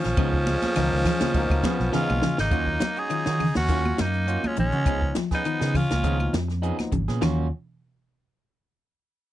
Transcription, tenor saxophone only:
0, 0, Header, 1, 2, 480
1, 0, Start_track
1, 0, Key_signature, -6, "minor"
1, 0, Tempo, 587659
1, 143, Time_signature, 4, 2, 24, 8
1, 7618, End_track
2, 0, Start_track
2, 0, Title_t, "Tenor saxophone"
2, 0, Program_c, 0, 66
2, 0, Note_on_c, 0, 53, 114
2, 1580, Note_off_c, 0, 53, 0
2, 1589, Note_on_c, 0, 65, 97
2, 1927, Note_off_c, 0, 65, 0
2, 1960, Note_on_c, 0, 63, 111
2, 2443, Note_on_c, 0, 68, 104
2, 2456, Note_off_c, 0, 63, 0
2, 2909, Note_off_c, 0, 68, 0
2, 2913, Note_on_c, 0, 66, 107
2, 3273, Note_on_c, 0, 63, 89
2, 3285, Note_off_c, 0, 66, 0
2, 3648, Note_on_c, 0, 61, 91
2, 3660, Note_off_c, 0, 63, 0
2, 3749, Note_off_c, 0, 61, 0
2, 3755, Note_on_c, 0, 61, 95
2, 4225, Note_off_c, 0, 61, 0
2, 4364, Note_on_c, 0, 63, 88
2, 4710, Note_on_c, 0, 65, 100
2, 4722, Note_off_c, 0, 63, 0
2, 5185, Note_off_c, 0, 65, 0
2, 7618, End_track
0, 0, End_of_file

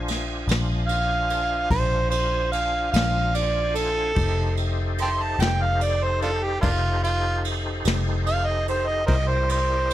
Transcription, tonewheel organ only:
0, 0, Header, 1, 2, 480
1, 0, Start_track
1, 0, Tempo, 820793
1, 2436, Time_signature, 12, 3, 24, 8
1, 5811, End_track
2, 0, Start_track
2, 0, Title_t, "Tonewheel organ"
2, 0, Program_c, 0, 16
2, 0, Note_on_c, 0, 62, 59
2, 0, Note_on_c, 0, 65, 65
2, 0, Note_on_c, 0, 72, 65
2, 0, Note_on_c, 0, 80, 63
2, 2409, Note_off_c, 0, 72, 0
2, 2410, Note_off_c, 0, 65, 0
2, 2411, Note_off_c, 0, 62, 0
2, 2411, Note_off_c, 0, 80, 0
2, 2426, Note_on_c, 0, 63, 71
2, 2427, Note_on_c, 0, 67, 68
2, 2429, Note_on_c, 0, 72, 67
2, 2432, Note_on_c, 0, 69, 61
2, 5288, Note_off_c, 0, 63, 0
2, 5288, Note_off_c, 0, 67, 0
2, 5289, Note_off_c, 0, 72, 0
2, 5291, Note_off_c, 0, 69, 0
2, 5301, Note_on_c, 0, 64, 65
2, 5305, Note_on_c, 0, 74, 66
2, 5309, Note_on_c, 0, 67, 69
2, 5310, Note_on_c, 0, 70, 66
2, 5811, Note_off_c, 0, 64, 0
2, 5811, Note_off_c, 0, 67, 0
2, 5811, Note_off_c, 0, 70, 0
2, 5811, Note_off_c, 0, 74, 0
2, 5811, End_track
0, 0, End_of_file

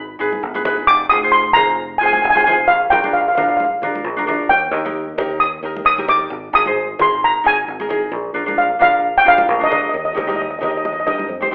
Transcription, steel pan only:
0, 0, Header, 1, 2, 480
1, 0, Start_track
1, 0, Key_signature, -3, "major"
1, 0, Tempo, 452830
1, 936, Time_signature, 4, 2, 24, 8
1, 12239, End_track
2, 0, Start_track
2, 0, Title_t, "Steel pan"
2, 0, Program_c, 0, 114
2, 926, Note_on_c, 0, 86, 114
2, 1154, Note_off_c, 0, 86, 0
2, 1161, Note_on_c, 0, 87, 107
2, 1397, Note_on_c, 0, 84, 96
2, 1416, Note_off_c, 0, 87, 0
2, 1626, Note_on_c, 0, 82, 99
2, 1654, Note_off_c, 0, 84, 0
2, 2086, Note_off_c, 0, 82, 0
2, 2101, Note_on_c, 0, 80, 85
2, 2166, Note_off_c, 0, 80, 0
2, 2179, Note_on_c, 0, 80, 77
2, 2245, Note_off_c, 0, 80, 0
2, 2258, Note_on_c, 0, 80, 74
2, 2342, Note_off_c, 0, 80, 0
2, 2354, Note_on_c, 0, 80, 66
2, 2429, Note_off_c, 0, 80, 0
2, 2442, Note_on_c, 0, 80, 89
2, 2500, Note_off_c, 0, 80, 0
2, 2513, Note_on_c, 0, 80, 70
2, 2576, Note_off_c, 0, 80, 0
2, 2588, Note_on_c, 0, 80, 76
2, 2670, Note_off_c, 0, 80, 0
2, 2683, Note_on_c, 0, 80, 57
2, 2763, Note_off_c, 0, 80, 0
2, 2837, Note_on_c, 0, 77, 100
2, 3077, Note_on_c, 0, 79, 92
2, 3094, Note_off_c, 0, 77, 0
2, 3321, Note_on_c, 0, 77, 72
2, 3334, Note_off_c, 0, 79, 0
2, 3389, Note_off_c, 0, 77, 0
2, 3402, Note_on_c, 0, 77, 52
2, 3466, Note_off_c, 0, 77, 0
2, 3478, Note_on_c, 0, 77, 65
2, 3539, Note_off_c, 0, 77, 0
2, 3552, Note_on_c, 0, 77, 59
2, 3622, Note_off_c, 0, 77, 0
2, 3635, Note_on_c, 0, 77, 61
2, 3695, Note_off_c, 0, 77, 0
2, 3708, Note_on_c, 0, 77, 51
2, 3770, Note_off_c, 0, 77, 0
2, 3782, Note_on_c, 0, 77, 55
2, 3851, Note_off_c, 0, 77, 0
2, 3864, Note_on_c, 0, 77, 49
2, 3953, Note_off_c, 0, 77, 0
2, 4763, Note_on_c, 0, 79, 97
2, 5724, Note_on_c, 0, 87, 93
2, 5758, Note_off_c, 0, 79, 0
2, 6197, Note_off_c, 0, 87, 0
2, 6210, Note_on_c, 0, 87, 106
2, 6458, Note_on_c, 0, 86, 90
2, 6460, Note_off_c, 0, 87, 0
2, 6943, Note_on_c, 0, 87, 115
2, 6951, Note_off_c, 0, 86, 0
2, 7433, Note_off_c, 0, 87, 0
2, 7436, Note_on_c, 0, 84, 89
2, 7672, Note_off_c, 0, 84, 0
2, 7677, Note_on_c, 0, 82, 89
2, 7913, Note_off_c, 0, 82, 0
2, 7913, Note_on_c, 0, 80, 85
2, 8351, Note_off_c, 0, 80, 0
2, 9095, Note_on_c, 0, 77, 82
2, 9337, Note_off_c, 0, 77, 0
2, 9350, Note_on_c, 0, 77, 105
2, 9720, Note_off_c, 0, 77, 0
2, 9726, Note_on_c, 0, 79, 107
2, 9829, Note_off_c, 0, 79, 0
2, 9839, Note_on_c, 0, 77, 107
2, 10204, Note_off_c, 0, 77, 0
2, 10214, Note_on_c, 0, 75, 89
2, 10299, Note_off_c, 0, 75, 0
2, 10311, Note_on_c, 0, 75, 73
2, 10381, Note_off_c, 0, 75, 0
2, 10403, Note_on_c, 0, 75, 51
2, 10465, Note_off_c, 0, 75, 0
2, 10486, Note_on_c, 0, 75, 61
2, 10541, Note_off_c, 0, 75, 0
2, 10563, Note_on_c, 0, 75, 53
2, 10626, Note_off_c, 0, 75, 0
2, 10655, Note_on_c, 0, 75, 60
2, 10710, Note_off_c, 0, 75, 0
2, 10741, Note_on_c, 0, 75, 53
2, 10788, Note_off_c, 0, 75, 0
2, 10812, Note_on_c, 0, 75, 51
2, 10869, Note_off_c, 0, 75, 0
2, 10897, Note_on_c, 0, 75, 57
2, 10951, Note_off_c, 0, 75, 0
2, 10980, Note_on_c, 0, 75, 65
2, 11027, Note_off_c, 0, 75, 0
2, 11044, Note_on_c, 0, 75, 55
2, 11104, Note_off_c, 0, 75, 0
2, 11136, Note_on_c, 0, 75, 47
2, 11189, Note_off_c, 0, 75, 0
2, 11223, Note_on_c, 0, 75, 50
2, 11267, Note_off_c, 0, 75, 0
2, 11282, Note_on_c, 0, 75, 62
2, 11342, Note_off_c, 0, 75, 0
2, 11354, Note_on_c, 0, 75, 46
2, 11407, Note_off_c, 0, 75, 0
2, 11420, Note_on_c, 0, 75, 56
2, 11483, Note_off_c, 0, 75, 0
2, 11508, Note_on_c, 0, 75, 54
2, 11571, Note_off_c, 0, 75, 0
2, 11583, Note_on_c, 0, 75, 59
2, 11646, Note_off_c, 0, 75, 0
2, 11659, Note_on_c, 0, 75, 57
2, 11722, Note_off_c, 0, 75, 0
2, 11733, Note_on_c, 0, 75, 71
2, 11804, Note_off_c, 0, 75, 0
2, 11820, Note_on_c, 0, 75, 55
2, 11887, Note_off_c, 0, 75, 0
2, 12239, End_track
0, 0, End_of_file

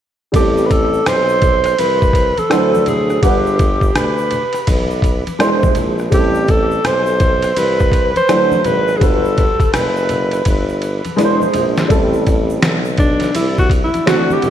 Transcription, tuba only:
0, 0, Header, 1, 2, 480
1, 0, Start_track
1, 0, Tempo, 722892
1, 225, Time_signature, 4, 2, 24, 8
1, 9628, End_track
2, 0, Start_track
2, 0, Title_t, "Tuba"
2, 0, Program_c, 0, 58
2, 225, Note_on_c, 0, 33, 104
2, 681, Note_off_c, 0, 33, 0
2, 706, Note_on_c, 0, 35, 82
2, 1162, Note_off_c, 0, 35, 0
2, 1185, Note_on_c, 0, 36, 77
2, 1557, Note_off_c, 0, 36, 0
2, 1577, Note_on_c, 0, 38, 40
2, 1612, Note_off_c, 0, 38, 0
2, 1663, Note_on_c, 0, 38, 93
2, 2120, Note_off_c, 0, 38, 0
2, 2143, Note_on_c, 0, 31, 98
2, 2600, Note_off_c, 0, 31, 0
2, 2623, Note_on_c, 0, 38, 82
2, 2925, Note_off_c, 0, 38, 0
2, 3105, Note_on_c, 0, 35, 86
2, 3477, Note_off_c, 0, 35, 0
2, 3497, Note_on_c, 0, 28, 44
2, 3533, Note_off_c, 0, 28, 0
2, 3587, Note_on_c, 0, 28, 92
2, 3824, Note_on_c, 0, 34, 86
2, 3834, Note_off_c, 0, 28, 0
2, 4053, Note_off_c, 0, 34, 0
2, 4064, Note_on_c, 0, 33, 97
2, 4521, Note_off_c, 0, 33, 0
2, 4546, Note_on_c, 0, 35, 82
2, 5002, Note_off_c, 0, 35, 0
2, 5026, Note_on_c, 0, 36, 86
2, 5397, Note_off_c, 0, 36, 0
2, 5417, Note_on_c, 0, 38, 39
2, 5452, Note_off_c, 0, 38, 0
2, 5506, Note_on_c, 0, 38, 84
2, 5734, Note_off_c, 0, 38, 0
2, 5746, Note_on_c, 0, 32, 87
2, 5973, Note_off_c, 0, 32, 0
2, 5985, Note_on_c, 0, 31, 96
2, 6286, Note_off_c, 0, 31, 0
2, 6465, Note_on_c, 0, 30, 85
2, 6921, Note_off_c, 0, 30, 0
2, 6946, Note_on_c, 0, 31, 87
2, 7317, Note_off_c, 0, 31, 0
2, 7336, Note_on_c, 0, 28, 44
2, 7372, Note_off_c, 0, 28, 0
2, 7422, Note_on_c, 0, 28, 83
2, 7652, Note_off_c, 0, 28, 0
2, 7662, Note_on_c, 0, 34, 91
2, 7892, Note_off_c, 0, 34, 0
2, 7903, Note_on_c, 0, 33, 100
2, 8360, Note_off_c, 0, 33, 0
2, 8382, Note_on_c, 0, 35, 80
2, 8840, Note_off_c, 0, 35, 0
2, 8863, Note_on_c, 0, 36, 78
2, 9236, Note_off_c, 0, 36, 0
2, 9255, Note_on_c, 0, 38, 46
2, 9291, Note_off_c, 0, 38, 0
2, 9344, Note_on_c, 0, 38, 85
2, 9573, Note_off_c, 0, 38, 0
2, 9584, Note_on_c, 0, 32, 87
2, 9628, Note_off_c, 0, 32, 0
2, 9628, End_track
0, 0, End_of_file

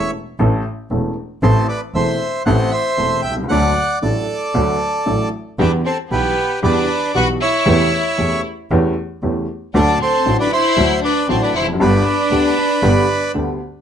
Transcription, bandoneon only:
0, 0, Header, 1, 2, 480
1, 0, Start_track
1, 0, Tempo, 518135
1, 1321, Time_signature, 4, 2, 24, 8
1, 12796, End_track
2, 0, Start_track
2, 0, Title_t, "Bandoneon"
2, 0, Program_c, 0, 23
2, 0, Note_on_c, 0, 73, 68
2, 0, Note_on_c, 0, 76, 95
2, 98, Note_off_c, 0, 76, 0
2, 100, Note_off_c, 0, 73, 0
2, 1325, Note_on_c, 0, 72, 85
2, 1332, Note_on_c, 0, 69, 67
2, 1545, Note_off_c, 0, 72, 0
2, 1549, Note_off_c, 0, 69, 0
2, 1560, Note_on_c, 0, 74, 89
2, 1573, Note_on_c, 0, 71, 62
2, 1668, Note_off_c, 0, 74, 0
2, 1678, Note_off_c, 0, 71, 0
2, 1802, Note_on_c, 0, 76, 98
2, 1812, Note_on_c, 0, 72, 75
2, 2245, Note_off_c, 0, 76, 0
2, 2251, Note_off_c, 0, 72, 0
2, 2275, Note_on_c, 0, 78, 91
2, 2287, Note_on_c, 0, 72, 68
2, 2505, Note_off_c, 0, 72, 0
2, 2511, Note_on_c, 0, 76, 107
2, 2523, Note_off_c, 0, 78, 0
2, 2533, Note_on_c, 0, 72, 78
2, 2972, Note_off_c, 0, 72, 0
2, 2983, Note_on_c, 0, 79, 96
2, 2990, Note_off_c, 0, 76, 0
2, 3004, Note_on_c, 0, 76, 64
2, 3095, Note_off_c, 0, 79, 0
2, 3111, Note_off_c, 0, 76, 0
2, 3234, Note_on_c, 0, 78, 102
2, 3256, Note_on_c, 0, 74, 83
2, 3685, Note_off_c, 0, 78, 0
2, 3697, Note_off_c, 0, 74, 0
2, 3724, Note_on_c, 0, 74, 86
2, 3744, Note_on_c, 0, 69, 68
2, 4893, Note_off_c, 0, 74, 0
2, 4903, Note_off_c, 0, 69, 0
2, 5192, Note_on_c, 0, 71, 61
2, 5195, Note_on_c, 0, 74, 77
2, 5296, Note_off_c, 0, 71, 0
2, 5298, Note_off_c, 0, 74, 0
2, 5427, Note_on_c, 0, 72, 75
2, 5435, Note_on_c, 0, 69, 53
2, 5532, Note_off_c, 0, 72, 0
2, 5538, Note_off_c, 0, 69, 0
2, 5667, Note_on_c, 0, 71, 82
2, 5669, Note_on_c, 0, 67, 62
2, 6110, Note_off_c, 0, 71, 0
2, 6111, Note_off_c, 0, 67, 0
2, 6148, Note_on_c, 0, 74, 85
2, 6149, Note_on_c, 0, 71, 68
2, 6592, Note_off_c, 0, 71, 0
2, 6634, Note_on_c, 0, 78, 97
2, 6638, Note_off_c, 0, 74, 0
2, 6640, Note_on_c, 0, 71, 73
2, 6739, Note_off_c, 0, 78, 0
2, 6744, Note_off_c, 0, 71, 0
2, 6870, Note_on_c, 0, 76, 93
2, 6878, Note_on_c, 0, 73, 67
2, 7790, Note_off_c, 0, 76, 0
2, 7794, Note_off_c, 0, 73, 0
2, 9034, Note_on_c, 0, 74, 98
2, 9043, Note_on_c, 0, 69, 77
2, 9250, Note_off_c, 0, 74, 0
2, 9254, Note_off_c, 0, 69, 0
2, 9283, Note_on_c, 0, 72, 90
2, 9288, Note_on_c, 0, 69, 80
2, 9604, Note_off_c, 0, 72, 0
2, 9606, Note_off_c, 0, 69, 0
2, 9635, Note_on_c, 0, 74, 98
2, 9642, Note_on_c, 0, 71, 71
2, 9737, Note_off_c, 0, 74, 0
2, 9741, Note_off_c, 0, 71, 0
2, 9749, Note_on_c, 0, 76, 107
2, 9760, Note_on_c, 0, 72, 84
2, 10186, Note_off_c, 0, 76, 0
2, 10191, Note_off_c, 0, 72, 0
2, 10234, Note_on_c, 0, 74, 97
2, 10237, Note_on_c, 0, 71, 76
2, 10445, Note_off_c, 0, 74, 0
2, 10447, Note_off_c, 0, 71, 0
2, 10469, Note_on_c, 0, 72, 81
2, 10471, Note_on_c, 0, 69, 69
2, 10572, Note_off_c, 0, 69, 0
2, 10582, Note_off_c, 0, 72, 0
2, 10583, Note_on_c, 0, 74, 82
2, 10592, Note_on_c, 0, 71, 64
2, 10688, Note_off_c, 0, 74, 0
2, 10692, Note_off_c, 0, 71, 0
2, 10703, Note_on_c, 0, 76, 87
2, 10708, Note_on_c, 0, 72, 69
2, 10808, Note_off_c, 0, 76, 0
2, 10811, Note_off_c, 0, 72, 0
2, 10939, Note_on_c, 0, 74, 98
2, 10943, Note_on_c, 0, 71, 74
2, 12336, Note_off_c, 0, 74, 0
2, 12338, Note_off_c, 0, 71, 0
2, 12796, End_track
0, 0, End_of_file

